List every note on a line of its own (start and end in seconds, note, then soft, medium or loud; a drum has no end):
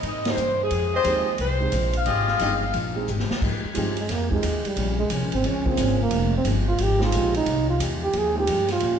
0.03 0.36 G#2 medium
0.03 0.27 C3 soft
0.03 0.27 E3 soft
0.03 0.28 A#3 soft
0.03 ride medium
0.07 0.28 D#4 soft
0.07 0.26 D#5 medium
0.25 0.36 A#3 medium
0.25 0.37 D#4 medium
0.25 0.37 E4 medium
0.25 0.37 G4 medium
0.25 0.61 C5 medium
0.25 snare medium
0.25 ride medium
0.37 0.70 G2 medium
0.37 0.60 C3 medium
0.37 0.61 E3 medium
0.37 0.61 A#3 medium
0.37 0.61 D#4 medium
0.37 hi-hat pedal medium
0.64 0.93 G#4 medium
0.70 1.04 F2 medium
0.70 0.94 F3 soft
0.70 0.94 G#3 soft
0.70 0.95 D#4 soft
0.70 0.95 G4 soft
0.70 ride medium
0.94 1.37 F4 medium
0.94 1.37 G4 medium
0.94 1.37 G#4 medium
0.94 1.26 C5 medium
0.94 1.37 D#5 medium
1.04 1.38 D#2 medium
1.04 1.27 F3 medium
1.04 1.24 G#3 medium
1.04 1.28 G#3 medium
1.04 1.25 C4 medium
1.04 1.25 D#4 medium
1.04 1.28 D#4 medium
1.04 1.28 G4 medium
1.04 1.25 G4 medium
1.04 hi-hat pedal medium
1.04 ride medium
1.38 1.72 C2 medium
1.38 1.62 F3 soft
1.38 1.62 G#3 soft
1.38 1.62 D#4 soft
1.38 1.63 G4 medium
1.38 1.92 C5 medium
1.38 ride medium
1.60 1.71 G#3 medium
1.60 1.71 C4 medium
1.60 1.71 D#4 soft
1.60 1.72 G4 medium
1.72 2.05 A#1 medium
1.72 1.96 F3 medium
1.72 1.96 G#3 medium
1.72 1.96 D#4 medium
1.72 1.96 G4 medium
1.72 hi-hat pedal medium
1.72 ride medium
1.93 ride soft
1.98 3.09 F5 medium
2.06 2.39 G#1 medium
2.06 2.30 F3 soft
2.06 2.30 G#3 soft
2.06 2.30 D#4 soft
2.06 2.39 F4 medium
2.06 2.39 G4 medium
2.06 2.31 G4 soft
2.06 2.39 G#4 medium
2.06 2.39 D#5 medium
2.06 ride medium
2.28 snare soft
2.39 2.73 G1 medium
2.39 2.63 F3 medium
2.39 2.60 G#3 medium
2.39 2.64 G#3 medium
2.39 2.60 C4 soft
2.39 2.60 D#4 soft
2.39 2.64 D#4 medium
2.39 2.55 F4 medium
2.39 2.55 G4 medium
2.39 2.61 G4 medium
2.39 2.64 G4 medium
2.39 2.55 G#4 medium
2.39 2.55 D#5 medium
2.39 hi-hat pedal medium
2.39 ride medium
2.73 3.07 A#1 medium
2.73 2.97 F3 soft
2.73 2.98 G#3 medium
2.73 2.98 D#4 medium
2.73 2.98 G4 medium
2.73 ride medium
2.96 3.06 G#3 medium
2.96 3.07 C4 medium
2.96 3.07 D#4 medium
2.96 3.07 G#4 medium
3.07 3.28 G#1 medium
3.07 3.31 F3 medium
3.07 3.31 G#3 medium
3.07 3.31 D#4 medium
3.07 3.32 G4 medium
3.07 hi-hat pedal medium
3.20 snare medium
3.31 muted upright bass stroke soft
3.31 snare medium
3.41 3.62 G#2 medium
3.41 3.64 F3 soft
3.41 3.65 G#3 medium
3.41 3.65 D#4 medium
3.41 3.66 G4 medium
3.41 kick medium
3.41 crash medium
3.65 muted upright bass stroke soft
3.75 4.09 G2 medium
3.75 3.99 F3 medium
3.75 3.95 G#3 medium
3.75 3.99 G#3 medium
3.75 3.95 C4 soft
3.75 3.95 D#4 medium
3.75 3.99 D#4 medium
3.75 3.95 F4 medium
3.75 3.95 G4 medium
3.75 4.00 G4 medium
3.75 hi-hat pedal medium
3.75 ride medium
3.97 4.14 G#3 medium
3.97 ride soft
4.09 4.42 F2 medium
4.09 4.32 F3 soft
4.09 4.32 G#3 soft
4.09 4.32 A#3 medium
4.09 4.33 D#4 soft
4.09 4.33 G4 soft
4.09 snare soft
4.09 ride medium
4.31 4.42 G#3 medium
4.31 4.68 G#3 medium
4.31 4.42 C4 medium
4.31 4.42 D#4 medium
4.31 4.42 F4 medium
4.31 4.42 G4 medium
4.31 kick medium
4.42 4.63 D#2 medium
4.42 4.66 F3 medium
4.42 4.66 G#3 medium
4.42 4.66 D#4 medium
4.42 4.66 G4 medium
4.42 hi-hat pedal medium
4.42 ride medium
4.65 4.99 G3 medium
4.65 muted upright bass stroke soft
4.65 ride soft
4.76 5.09 A#1 medium
4.76 4.99 A#2 soft
4.76 5.00 F3 soft
4.76 5.00 G#3 soft
4.76 5.01 C#4 medium
4.76 ride medium
4.99 5.10 G#3 medium
5.10 5.21 C2 medium
5.10 5.33 A#2 medium
5.10 5.34 F3 medium
5.10 5.34 G#3 medium
5.10 5.34 C#4 medium
5.10 hi-hat pedal medium
5.10 ride medium
5.21 5.32 A#1 medium
5.32 5.43 G#1 medium
5.32 5.48 C4 medium
5.32 ride soft
5.43 5.77 C#2 medium
5.43 5.67 A#2 soft
5.43 5.67 F3 soft
5.43 5.68 G#3 soft
5.43 5.68 C#4 soft
5.43 5.69 C#4 medium
5.43 ride medium
5.65 6.09 C#3 medium
5.65 6.09 A#3 medium
5.65 6.09 C4 medium
5.65 6.00 C4 medium
5.65 6.09 F4 medium
5.65 6.09 G#4 medium
5.65 kick medium
5.77 6.10 G#1 medium
5.77 6.01 A#2 medium
5.77 6.01 F3 medium
5.77 6.02 G#3 medium
5.77 6.02 C#4 medium
5.77 hi-hat pedal medium
5.77 ride medium
6.02 6.32 A#3 medium
6.11 6.44 F1 medium
6.11 6.35 F3 soft
6.11 6.35 G#3 soft
6.11 6.35 D#4 soft
6.11 6.36 G4 soft
6.11 ride medium
6.37 6.46 C4 medium
6.45 6.78 G1 medium
6.45 6.69 F3 medium
6.45 6.69 G#3 medium
6.45 6.69 D#4 medium
6.45 6.69 G4 medium
6.45 hi-hat pedal medium
6.45 ride medium
6.68 6.84 F4 medium
6.78 7.11 G#1 medium
6.78 7.02 F3 soft
6.78 7.03 G#3 soft
6.78 7.03 D#4 soft
6.78 7.03 G4 medium
6.78 ride medium
6.83 7.03 G4 loud
6.99 7.43 G#3 medium
6.99 7.44 C4 medium
6.99 7.44 D#4 medium
6.99 7.44 F4 medium
6.99 7.44 G4 medium
6.99 snare medium
7.04 7.34 F4 medium
7.12 7.46 A#1 medium
7.12 7.36 F3 medium
7.12 7.36 G#3 medium
7.12 7.36 D#4 medium
7.12 7.37 G4 medium
7.12 hi-hat pedal medium
7.12 ride medium
7.34 7.67 D#4 medium
7.34 ride soft
7.46 7.79 C2 medium
7.46 7.69 F3 soft
7.46 7.70 G#3 soft
7.46 7.70 D#4 medium
7.46 7.70 G4 soft
7.46 ride medium
7.69 7.80 F4 medium
7.80 8.13 E2 medium
7.80 8.03 F3 medium
7.80 8.04 G#3 medium
7.80 8.04 D#4 medium
7.80 8.04 G4 medium
7.80 hi-hat pedal medium
7.80 ride medium
8.03 8.19 G4 medium
8.13 8.46 D#2 medium
8.13 8.37 F3 soft
8.13 8.37 G#3 soft
8.13 8.38 D#4 soft
8.13 8.38 G4 medium
8.13 ride medium
8.18 8.38 G#4 loud
8.35 8.46 G#3 medium
8.35 8.46 C4 medium
8.35 8.47 D#4 medium
8.35 8.47 F4 medium
8.35 8.47 G4 medium
8.35 8.69 G4 medium
8.47 8.80 G2 medium
8.47 8.71 F3 medium
8.47 8.71 G#3 medium
8.47 8.71 D#4 medium
8.47 8.72 G4 medium
8.47 hi-hat pedal soft
8.47 ride medium
8.68 8.99 F4 medium
8.68 snare soft
8.68 ride soft
8.80 8.99 A#2 medium
8.80 8.99 A#2 soft
8.80 8.99 F3 soft
8.80 8.99 G#3 soft
8.80 8.99 C#4 medium
8.80 ride medium